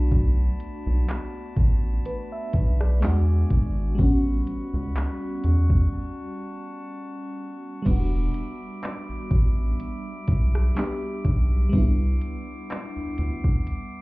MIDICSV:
0, 0, Header, 1, 5, 480
1, 0, Start_track
1, 0, Key_signature, 1, "minor"
1, 0, Tempo, 967742
1, 59, Time_signature, 4, 2, 24, 8
1, 6952, End_track
2, 0, Start_track
2, 0, Title_t, "Woodwind section"
2, 0, Program_c, 0, 71
2, 0, Note_on_c, 0, 66, 77
2, 0, Note_on_c, 0, 74, 71
2, 0, Note_on_c, 0, 81, 70
2, 0, Note_on_c, 0, 83, 72
2, 1479, Note_off_c, 0, 74, 0
2, 1479, Note_off_c, 0, 83, 0
2, 1481, Note_off_c, 0, 81, 0
2, 1498, Note_on_c, 0, 76, 69
2, 1499, Note_on_c, 0, 80, 64
2, 1499, Note_on_c, 0, 86, 83
2, 1958, Note_off_c, 0, 66, 0
2, 1974, Note_off_c, 0, 76, 0
2, 1974, Note_off_c, 0, 80, 0
2, 1974, Note_off_c, 0, 86, 0
2, 1978, Note_on_c, 0, 55, 82
2, 1978, Note_on_c, 0, 78, 76
2, 1978, Note_on_c, 0, 83, 79
2, 1978, Note_on_c, 0, 85, 87
2, 2854, Note_off_c, 0, 83, 0
2, 2938, Note_on_c, 0, 81, 74
2, 3879, Note_off_c, 0, 55, 0
2, 3879, Note_off_c, 0, 78, 0
2, 3879, Note_off_c, 0, 85, 0
2, 3889, Note_off_c, 0, 81, 0
2, 3897, Note_on_c, 0, 83, 77
2, 3898, Note_on_c, 0, 55, 82
2, 3898, Note_on_c, 0, 76, 76
2, 3898, Note_on_c, 0, 86, 89
2, 5799, Note_off_c, 0, 55, 0
2, 5799, Note_off_c, 0, 83, 0
2, 5818, Note_on_c, 0, 59, 87
2, 5819, Note_on_c, 0, 84, 73
2, 6952, Note_off_c, 0, 59, 0
2, 6952, Note_off_c, 0, 76, 0
2, 6952, Note_off_c, 0, 84, 0
2, 6952, Note_off_c, 0, 86, 0
2, 6952, End_track
3, 0, Start_track
3, 0, Title_t, "FM electric piano"
3, 0, Program_c, 1, 5
3, 0, Control_c, 1, 64, 127
3, 0, Note_on_c, 1, 57, 74
3, 0, Note_on_c, 1, 59, 72
3, 0, Note_on_c, 1, 62, 71
3, 0, Note_on_c, 1, 66, 85
3, 1022, Note_on_c, 1, 71, 60
3, 1143, Note_off_c, 1, 71, 0
3, 1152, Note_on_c, 1, 76, 68
3, 1378, Note_off_c, 1, 76, 0
3, 1391, Note_on_c, 1, 74, 66
3, 1469, Note_off_c, 1, 57, 0
3, 1476, Note_off_c, 1, 59, 0
3, 1484, Note_off_c, 1, 62, 0
3, 1492, Note_on_c, 1, 56, 73
3, 1498, Note_on_c, 1, 59, 68
3, 1504, Control_c, 1, 64, 0
3, 1506, Note_on_c, 1, 62, 71
3, 1507, Note_off_c, 1, 66, 0
3, 1513, Note_on_c, 1, 66, 86
3, 1598, Control_c, 1, 64, 127
3, 1618, Note_off_c, 1, 74, 0
3, 1959, Note_on_c, 1, 55, 73
3, 1968, Note_off_c, 1, 59, 0
3, 1974, Note_on_c, 1, 59, 68
3, 1975, Note_off_c, 1, 56, 0
3, 1982, Note_off_c, 1, 62, 0
3, 1986, Note_off_c, 1, 66, 0
3, 1986, Control_c, 1, 64, 0
3, 1988, Note_on_c, 1, 61, 70
3, 2003, Note_on_c, 1, 66, 82
3, 2072, Control_c, 1, 64, 127
3, 3869, Note_off_c, 1, 55, 0
3, 3876, Note_off_c, 1, 59, 0
3, 3880, Note_on_c, 1, 55, 74
3, 3883, Note_off_c, 1, 61, 0
3, 3891, Note_off_c, 1, 66, 0
3, 3894, Note_on_c, 1, 59, 70
3, 3906, Control_c, 1, 64, 0
3, 3908, Note_on_c, 1, 62, 65
3, 3923, Note_on_c, 1, 66, 82
3, 3993, Control_c, 1, 64, 127
3, 5309, Note_off_c, 1, 55, 0
3, 5316, Note_off_c, 1, 59, 0
3, 5324, Note_off_c, 1, 62, 0
3, 5331, Note_off_c, 1, 66, 0
3, 5331, Note_on_c, 1, 55, 60
3, 5339, Note_on_c, 1, 59, 53
3, 5346, Note_on_c, 1, 62, 52
3, 5354, Note_on_c, 1, 67, 65
3, 5794, Note_off_c, 1, 55, 0
3, 5800, Note_on_c, 1, 55, 77
3, 5808, Note_off_c, 1, 59, 0
3, 5814, Note_on_c, 1, 59, 70
3, 5822, Note_off_c, 1, 62, 0
3, 5826, Note_off_c, 1, 67, 0
3, 5826, Control_c, 1, 64, 0
3, 5829, Note_on_c, 1, 62, 69
3, 5843, Note_on_c, 1, 64, 82
3, 5914, Control_c, 1, 64, 127
3, 6952, Note_off_c, 1, 55, 0
3, 6952, Note_off_c, 1, 59, 0
3, 6952, Note_off_c, 1, 62, 0
3, 6952, Note_off_c, 1, 64, 0
3, 6952, End_track
4, 0, Start_track
4, 0, Title_t, "Analog synth bass"
4, 0, Program_c, 2, 38
4, 0, Note_on_c, 2, 35, 98
4, 245, Note_off_c, 2, 35, 0
4, 430, Note_on_c, 2, 35, 96
4, 527, Note_off_c, 2, 35, 0
4, 777, Note_on_c, 2, 33, 95
4, 991, Note_off_c, 2, 33, 0
4, 1259, Note_on_c, 2, 35, 93
4, 1500, Note_on_c, 2, 40, 99
4, 1507, Note_off_c, 2, 35, 0
4, 1712, Note_off_c, 2, 40, 0
4, 1739, Note_on_c, 2, 32, 92
4, 1952, Note_off_c, 2, 32, 0
4, 1979, Note_on_c, 2, 33, 104
4, 2192, Note_off_c, 2, 33, 0
4, 2350, Note_on_c, 2, 37, 97
4, 2447, Note_off_c, 2, 37, 0
4, 2700, Note_on_c, 2, 40, 95
4, 2912, Note_off_c, 2, 40, 0
4, 3899, Note_on_c, 2, 28, 102
4, 4112, Note_off_c, 2, 28, 0
4, 4509, Note_on_c, 2, 33, 49
4, 4553, Note_off_c, 2, 33, 0
4, 4617, Note_on_c, 2, 33, 98
4, 4831, Note_off_c, 2, 33, 0
4, 5099, Note_on_c, 2, 35, 96
4, 5312, Note_off_c, 2, 35, 0
4, 5580, Note_on_c, 2, 35, 93
4, 5792, Note_off_c, 2, 35, 0
4, 5819, Note_on_c, 2, 36, 105
4, 6032, Note_off_c, 2, 36, 0
4, 6430, Note_on_c, 2, 38, 49
4, 6474, Note_off_c, 2, 38, 0
4, 6541, Note_on_c, 2, 38, 85
4, 6753, Note_off_c, 2, 38, 0
4, 6952, End_track
5, 0, Start_track
5, 0, Title_t, "Drums"
5, 57, Note_on_c, 9, 42, 68
5, 58, Note_on_c, 9, 36, 108
5, 107, Note_off_c, 9, 36, 0
5, 107, Note_off_c, 9, 42, 0
5, 298, Note_on_c, 9, 42, 65
5, 347, Note_off_c, 9, 42, 0
5, 538, Note_on_c, 9, 42, 73
5, 544, Note_on_c, 9, 39, 106
5, 588, Note_off_c, 9, 42, 0
5, 593, Note_off_c, 9, 39, 0
5, 776, Note_on_c, 9, 36, 90
5, 776, Note_on_c, 9, 42, 64
5, 826, Note_off_c, 9, 36, 0
5, 826, Note_off_c, 9, 42, 0
5, 1019, Note_on_c, 9, 42, 72
5, 1068, Note_off_c, 9, 42, 0
5, 1256, Note_on_c, 9, 42, 80
5, 1258, Note_on_c, 9, 36, 101
5, 1306, Note_off_c, 9, 42, 0
5, 1308, Note_off_c, 9, 36, 0
5, 1392, Note_on_c, 9, 37, 94
5, 1442, Note_off_c, 9, 37, 0
5, 1498, Note_on_c, 9, 42, 66
5, 1505, Note_on_c, 9, 39, 108
5, 1548, Note_off_c, 9, 42, 0
5, 1555, Note_off_c, 9, 39, 0
5, 1738, Note_on_c, 9, 36, 102
5, 1738, Note_on_c, 9, 42, 84
5, 1787, Note_off_c, 9, 42, 0
5, 1788, Note_off_c, 9, 36, 0
5, 1978, Note_on_c, 9, 36, 109
5, 1978, Note_on_c, 9, 42, 75
5, 2028, Note_off_c, 9, 36, 0
5, 2028, Note_off_c, 9, 42, 0
5, 2218, Note_on_c, 9, 42, 62
5, 2267, Note_off_c, 9, 42, 0
5, 2458, Note_on_c, 9, 42, 72
5, 2464, Note_on_c, 9, 39, 104
5, 2508, Note_off_c, 9, 42, 0
5, 2513, Note_off_c, 9, 39, 0
5, 2696, Note_on_c, 9, 42, 62
5, 2746, Note_off_c, 9, 42, 0
5, 2827, Note_on_c, 9, 36, 84
5, 2877, Note_off_c, 9, 36, 0
5, 3898, Note_on_c, 9, 36, 113
5, 3898, Note_on_c, 9, 42, 74
5, 3899, Note_on_c, 9, 49, 101
5, 3948, Note_off_c, 9, 36, 0
5, 3948, Note_off_c, 9, 42, 0
5, 3948, Note_off_c, 9, 49, 0
5, 4138, Note_on_c, 9, 42, 66
5, 4187, Note_off_c, 9, 42, 0
5, 4379, Note_on_c, 9, 42, 72
5, 4384, Note_on_c, 9, 39, 106
5, 4429, Note_off_c, 9, 42, 0
5, 4434, Note_off_c, 9, 39, 0
5, 4617, Note_on_c, 9, 36, 92
5, 4617, Note_on_c, 9, 42, 63
5, 4666, Note_off_c, 9, 36, 0
5, 4666, Note_off_c, 9, 42, 0
5, 4859, Note_on_c, 9, 42, 79
5, 4909, Note_off_c, 9, 42, 0
5, 5097, Note_on_c, 9, 42, 76
5, 5099, Note_on_c, 9, 36, 104
5, 5146, Note_off_c, 9, 42, 0
5, 5148, Note_off_c, 9, 36, 0
5, 5233, Note_on_c, 9, 37, 88
5, 5283, Note_off_c, 9, 37, 0
5, 5339, Note_on_c, 9, 42, 70
5, 5346, Note_on_c, 9, 39, 117
5, 5388, Note_off_c, 9, 42, 0
5, 5395, Note_off_c, 9, 39, 0
5, 5578, Note_on_c, 9, 42, 84
5, 5579, Note_on_c, 9, 36, 101
5, 5628, Note_off_c, 9, 36, 0
5, 5628, Note_off_c, 9, 42, 0
5, 5818, Note_on_c, 9, 36, 106
5, 5818, Note_on_c, 9, 42, 77
5, 5868, Note_off_c, 9, 36, 0
5, 5868, Note_off_c, 9, 42, 0
5, 6058, Note_on_c, 9, 42, 66
5, 6108, Note_off_c, 9, 42, 0
5, 6300, Note_on_c, 9, 42, 71
5, 6305, Note_on_c, 9, 39, 104
5, 6349, Note_off_c, 9, 42, 0
5, 6355, Note_off_c, 9, 39, 0
5, 6537, Note_on_c, 9, 42, 65
5, 6587, Note_off_c, 9, 42, 0
5, 6667, Note_on_c, 9, 36, 90
5, 6717, Note_off_c, 9, 36, 0
5, 6779, Note_on_c, 9, 42, 76
5, 6829, Note_off_c, 9, 42, 0
5, 6952, End_track
0, 0, End_of_file